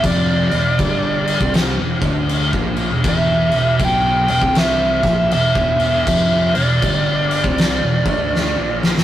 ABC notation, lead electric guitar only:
X:1
M:4/4
L:1/8
Q:"Swing" 1/4=80
K:Ephr
V:1 name="Lead electric guitar"
d4 z4 | e2 g g e2 e2 | e d6 z |]